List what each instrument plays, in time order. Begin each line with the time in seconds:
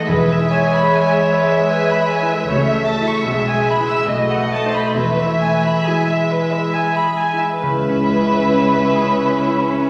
Already playing: harp D#4 A4 B4 D#5 A5
0.08 double bass section E1, cello section E2, harp E3, viola section G#3, clarinet G#4, violin section B4 E5
0.32 violin section E5
0.38 harp E4
0.51 clarinet C#5, violin section G#5
0.66 harp G#4
0.75 violin section B5
0.93 harp B4, violin section G#5
1.13 violin section E5
1.18 harp E5
1.32 violin section B4
1.45 harp G#5
1.52 violin section E5
1.70 clarinet B4, harp E5, violin section G#5
1.91 violin section B5
1.96 harp B4
2.11 clarinet C#5, violin section G#5
2.22 harp E4, clarinet B4
2.30 clarinet A4, violin section E5
2.40 clarinet B4
2.48 double bass section C#2, harp C#3, cello section C#3, viola section A3, clarinet F#4, violin section C#5
2.68 violin section E5
2.76 harp A3
2.88 violin section A5
3.01 harp E4 A4
3.08 violin section C#6
3.26 double bass section B1, cello section B2, harp B2, viola section G#3, clarinet G#4, violin section E5
3.48 violin section G#5
3.53 harp G#3
3.70 violin section B5
3.80 harp E4 B4
3.89 violin section E6
4.08 double bass section B1, cello section B2, harp B2, viola section A3, clarinet F#4, violin section D#5
4.29 violin section F#5
4.36 harp A3
4.52 violin section A5
4.66 harp D#4 C5
4.75 violin section B5
4.95 double bass section E1, cello section E2, harp E3, clarinet F#4, violin section B4 E5
5.19 violin section E5
5.25 harp E4
5.42 violin section G#5
5.55 harp B4
5.63 violin section B5
5.85 viola section G#3, clarinet E4, harp G#4, violin section G#5
6.07 violin section E5
6.15 harp E5
6.30 violin section B4
6.44 harp B5
6.52 violin section E5
6.73 harp E5, violin section G#5
6.95 violin section B5
7.03 harp G#4
7.18 violin section G#5
7.33 harp E4
7.39 violin section E5
7.62 cello section C#2, double bass section C#2, harp C#3, viola section C#4, clarinet E4, violin section B4 E5, flute B5
7.89 harp C#4
8.16 harp G#3
8.43 harp E4
8.69 harp B4
8.95 harp G#4
9.21 harp B4
9.47 harp E4
9.73 harp C#4